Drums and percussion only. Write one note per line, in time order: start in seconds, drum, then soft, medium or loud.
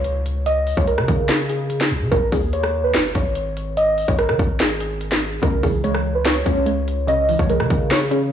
0.04 closed hi-hat medium
0.26 closed hi-hat medium
0.46 closed hi-hat medium
0.67 open hi-hat medium
0.77 kick loud
0.88 closed hi-hat medium
0.98 cross-stick medium
1.08 kick loud
1.29 snare loud
1.29 clap medium
1.29 closed hi-hat medium
1.49 closed hi-hat medium
1.70 closed hi-hat medium
1.81 snare medium
1.81 clap medium
2.12 kick loud
2.12 closed hi-hat medium
2.32 kick loud
2.32 open hi-hat medium
2.53 closed hi-hat medium
2.63 cross-stick medium
2.94 snare loud
2.94 clap medium
2.94 closed hi-hat medium
3.15 kick medium
3.15 closed hi-hat medium
3.35 closed hi-hat medium
3.57 closed hi-hat medium
3.77 closed hi-hat medium
3.98 open hi-hat medium
4.08 kick loud
4.19 cross-stick medium
4.19 closed hi-hat medium
4.29 cross-stick medium
4.39 kick loud
4.60 snare loud
4.60 clap medium
4.60 closed hi-hat medium
4.80 closed hi-hat medium
5.01 closed hi-hat medium
5.12 snare medium
5.12 clap medium
5.43 kick loud
5.43 closed hi-hat medium
5.63 kick loud
5.63 open hi-hat medium
5.84 closed hi-hat medium
5.95 cross-stick medium
6.25 snare loud
6.25 clap medium
6.25 closed hi-hat medium
6.46 kick medium
6.46 closed hi-hat medium
6.66 closed hi-hat medium
6.88 closed hi-hat medium
7.08 closed hi-hat medium
7.29 open hi-hat medium
7.39 kick loud
7.50 closed hi-hat medium
7.60 cross-stick medium
7.70 kick loud
7.91 snare loud
7.91 clap medium
7.91 closed hi-hat medium
8.11 closed hi-hat medium